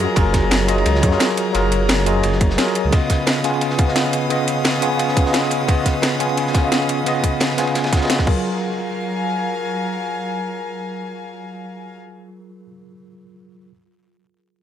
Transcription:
Already playing: tine electric piano F#3 F4 G#4 A#4 C#5 D#5, string section G#4 F5 A#5
0.15 detuned saw bass F#1, tine electric piano F#3 F4 G#4 A#4, kick, closed hi-hat, ride
0.33 kick, snare, closed hi-hat, ride
0.51 snare, closed hi-hat, ride
0.68 tine electric piano F#3 F4 G#4 D#5, snare, closed hi-hat, ride
0.78 ride
0.86 detuned saw bass C#2, closed hi-hat, ride
0.95 snare
1.02 detuned saw bass F#2, tine electric piano F#3 F4 G#4 C#5, kick, closed hi-hat, ride
1.10 tine electric piano F#3 F4 G#4 A#4, snare
1.20 snare, closed hi-hat, ride
1.37 closed hi-hat, ride
1.53 detuned saw bass F#1, tine electric piano F#3 F4 G#4 A#4, closed hi-hat, ride
1.72 closed hi-hat, ride
1.89 snare, closed hi-hat, ride
1.98 snare
2.06 tine electric piano F#3 F4 G#4 D#5, closed hi-hat, ride
2.23 detuned saw bass F#1, closed hi-hat, ride
2.33 snare
2.41 kick, closed hi-hat, ride
2.50 snare
2.57 tine electric piano F#3 F4 G#4 A#4, snare, closed hi-hat, ride
2.68 ride
2.75 closed hi-hat, ride
2.85 detuned saw bass C#2
2.91 tine electric piano C#3 B3 F4 D#5, string section C#4 B4 F5 D#6, kick, closed hi-hat, ride
3.10 kick, snare, closed hi-hat, ride
3.27 snare, closed hi-hat, ride
3.43 tine electric piano C#3 B3 F4 G#5, snare, closed hi-hat, ride
3.54 ride
3.61 closed hi-hat, ride
3.70 snare
3.78 tine electric piano C#3 B3 F4 F5, kick, closed hi-hat, ride
3.86 tine electric piano C#3 B3 F4 D#5, snare
3.96 snare, closed hi-hat, ride
4.13 closed hi-hat, ride
4.29 tine electric piano C#3 B3 F4 D#5, closed hi-hat, ride
4.48 closed hi-hat, ride
4.64 snare, closed hi-hat, ride
4.74 snare
4.81 tine electric piano C#3 B3 F4 G#5, closed hi-hat, ride
4.99 closed hi-hat, ride
5.08 snare
5.16 tine electric piano C#3 B3 F4 F5, kick, closed hi-hat, ride
5.24 tine electric piano C#3 B3 F4 D#5, snare
5.33 snare, closed hi-hat, ride
5.43 ride
5.51 closed hi-hat, ride
5.66 tine electric piano C#3 B3 F4 D#5, kick, closed hi-hat, ride
5.85 kick, snare, closed hi-hat, ride
6.02 snare, closed hi-hat, ride
6.19 tine electric piano C#3 B3 F4 G#5, snare, closed hi-hat, ride
6.29 ride
6.37 closed hi-hat, ride
6.47 snare
6.54 tine electric piano C#3 B3 F4 F5, kick, snare, closed hi-hat, ride
6.62 tine electric piano C#3 B3 F4 D#5
6.72 snare, closed hi-hat, ride
6.81 ride
6.89 closed hi-hat, ride
7.05 tine electric piano C#3 B3 F4 D#5, closed hi-hat, ride
7.23 kick, closed hi-hat, ride
7.40 snare, closed hi-hat, ride
7.50 snare
7.57 tine electric piano C#3 B3 F4 G#5, snare, closed hi-hat, ride
7.67 ride
7.75 snare, closed hi-hat, ride
7.84 snare, ride
7.92 tine electric piano C#3 B3 F4 F5, kick, snare, closed hi-hat, ride
7.97 tine electric piano C#3, snare, ride
8.01 tine electric piano B3 F4 D#5, snare, ride
8.05 snare, ride
8.10 snare, closed hi-hat, ride
8.18 kick, snare, ride
8.24 tine electric piano F#3 F4 G#4, string section F#3 A#4 F5 G#5, kick, crash
8.30 tine electric piano A#4

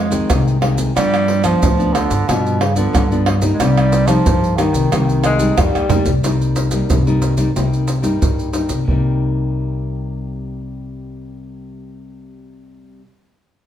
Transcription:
Already playing: upright bass F2, nylon-string guitar F2, bass clarinet G#3
0.10 nylon-string guitar D#3 G#3 C4, pandeiro, maracas, surdo
0.29 upright bass C2, nylon-string guitar C3, pandeiro, tamborim, maracas, surdo
0.48 pandeiro, maracas
0.61 nylon-string guitar D#3 G#3 C4, pandeiro, tamborim
0.78 pandeiro, maracas, surdo
0.95 nylon-string guitar G2 F3 B3 D4, upright bass G2, bass clarinet G3, pandeiro, tamborim, maracas, surdo
1.14 pandeiro, tamborim, maracas
1.28 pandeiro
1.43 nylon-string guitar F3 B3 D4, bass clarinet F3, pandeiro, tamborim, maracas, surdo
1.62 upright bass D2, nylon-string guitar D3, pandeiro, maracas, surdo
1.78 nylon-string guitar F3 B3 D4, pandeiro, maracas
1.94 bass clarinet D3, pandeiro, tamborim, maracas
2.10 upright bass G2, pandeiro, maracas, surdo
2.27 nylon-string guitar G2 F3 B3 D4, upright bass G2, bass clarinet B2, pandeiro, tamborim, maracas, surdo
2.46 pandeiro, maracas
2.61 bass clarinet C#3, pandeiro, tamborim
2.75 bass clarinet D3, nylon-string guitar F3 B3 D4, pandeiro, maracas, surdo
2.93 upright bass G2, nylon-string guitar D3, pandeiro, tamborim, maracas, surdo
3.11 nylon-string guitar F3 B3 D4, pandeiro, maracas
3.26 pandeiro, tamborim
3.41 nylon-string guitar G3 A#3 D#4, pandeiro, maracas, surdo
3.54 bass clarinet G#3
3.60 upright bass C2, nylon-string guitar C3, bass clarinet G3, pandeiro, tamborim, maracas, surdo
3.77 pandeiro, tamborim, maracas
3.92 pandeiro, maracas
4.07 bass clarinet F3, nylon-string guitar G3 A#3 D#4, pandeiro, tamborim, maracas, surdo
4.26 upright bass G2, nylon-string guitar G2, pandeiro, maracas, surdo
4.44 pandeiro, maracas
4.56 bass clarinet D#3, nylon-string guitar G3 A#3 D#4, pandeiro, tamborim, maracas
4.73 upright bass C2, pandeiro, maracas, surdo
4.92 upright bass C2, nylon-string guitar C3 G3 A#3 D#4, pandeiro, tamborim, maracas, surdo
5.09 pandeiro, maracas
5.24 tenor saxophone G#3, pandeiro, tamborim, maracas
5.39 nylon-string guitar G3 A#3 D#4, pandeiro, maracas, surdo
5.58 upright bass F2, nylon-string guitar G2, tenor saxophone G3, pandeiro, tamborim, maracas, surdo
5.75 upright bass D#2, pandeiro, tamborim, maracas
5.89 upright bass D2, nylon-string guitar G3 A#3 D#4, surdo, pandeiro, maracas
6.04 upright bass C2, pandeiro, maracas, surdo
6.23 upright bass C2, nylon-string guitar C3 G3 A#3 D#4, pandeiro, maracas, surdo
6.41 pandeiro, maracas
6.56 pandeiro, maracas, surdo
6.71 nylon-string guitar G3 A#3 D#4, pandeiro, maracas, surdo
6.89 upright bass C2, nylon-string guitar G2, pandeiro, maracas, surdo
7.07 nylon-string guitar G3 A#3 D#4, pandeiro, maracas
7.22 pandeiro, maracas
7.37 nylon-string guitar G3 A#3 D#4, pandeiro, maracas, surdo
7.55 upright bass C2, nylon-string guitar C3 G3 A#3 D#4, pandeiro, maracas, surdo
7.73 pandeiro, maracas
7.88 pandeiro, maracas
8.02 upright bass G2, nylon-string guitar G3 A#3 D#4, pandeiro, maracas, surdo
8.21 nylon-string guitar G2, upright bass G2, pandeiro, maracas, surdo
8.39 pandeiro, maracas
8.53 nylon-string guitar G3 A#3 D#4, pandeiro, maracas
8.69 upright bass C2, pandeiro, maracas, surdo
8.85 upright bass C2, nylon-string guitar C3 G3, surdo
8.89 nylon-string guitar A#3 D#4

